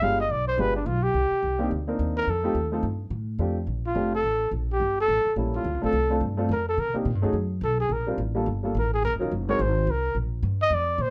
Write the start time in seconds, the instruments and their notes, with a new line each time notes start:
0.02 upright bass G1, upright piano G#3 B3 D4 F4 G4, trumpet F5
0.20 trumpet D#5
0.30 upright bass B1, trumpet D5
0.48 trumpet C5
0.57 upright bass G1, upright piano G#3 B3 D4 F4 G4, trumpet B4
0.76 trumpet D4
0.86 upright bass B1, trumpet F4
1.03 trumpet G4
1.14 upright bass C2
1.31 muted upright bass stroke
1.43 upright bass C2
1.59 upright piano A#3 C4 D4 D#4 G4
1.71 upright bass D2
1.87 upright piano A#3 C4 D4 D#4 A#4
1.99 upright bass D#2
2.17 trumpet A#4
2.27 upright bass F2, trumpet A4
2.44 upright piano A3 C4 D#4 F4 G4
2.55 upright bass D#2
2.72 upright piano A3 C4 D#4 F4 A4
2.83 upright bass G2
3.10 upright bass A2
3.39 upright bass F2, upright piano A3 C4 D4 F4 G4
3.67 upright bass A#1
3.87 trumpet F4
3.95 upright bass F1, upright piano A3 C4 D4 F4 G4
4.15 trumpet A4
4.23 upright bass A1
4.51 upright bass A#1
4.73 trumpet G4
4.80 upright bass G1
5.01 trumpet A4
5.08 upright bass A1
5.25 muted upright bass stroke
5.36 upright bass A#1, upright piano G3 A#3 C#4 E4 A4
5.56 trumpet F4
5.64 upright bass D2
5.74 upright bass C2
5.82 upright bass A1, upright piano A3 C4 D4 F4 A4, trumpet A4
5.93 upright bass C2
6.10 upright piano A3 C4 D4 F4 A4
6.21 upright bass G2
6.37 upright piano A3 C4 D4 F4 A4
6.49 upright bass F2, trumpet A#4
6.69 trumpet A4
6.78 upright bass C3, trumpet A#4
6.94 upright piano A#3 C4 D4 D#4 G4, muted upright bass stroke
7.05 upright bass A#2
7.15 upright bass G2
7.22 upright bass D#2, upright piano A3 C#4 D#4 F#4 G#4
7.33 upright bass F#2
7.61 upright bass B1, trumpet A4
7.80 trumpet G#4
7.89 upright bass A#1, trumpet A#4
8.07 upright piano G3 C4 D4 F4 A#4
8.18 upright bass A1
8.35 upright piano G3 A#3 D4 F4 A4
8.46 upright bass G1
8.63 upright piano G3 A#3 D4 F4 A4
8.75 upright bass A1
8.79 trumpet A#4
8.94 trumpet G#4
9.03 upright bass A#1, trumpet A#4
9.13 upright bass F#1
9.19 upright bass D#1, upright piano F#3 C#4 D#4 F4 A#4
9.32 upright bass F#1
9.48 upright piano G#3 C4 D#4 F#4 A#4, trumpet C#5
9.59 upright bass G#1, trumpet C5
9.87 upright bass C2, trumpet A#4
10.15 upright bass A#1
10.43 upright bass G2
10.62 trumpet D#5
10.70 upright bass F2, trumpet D5
10.98 upright bass A#2, trumpet C5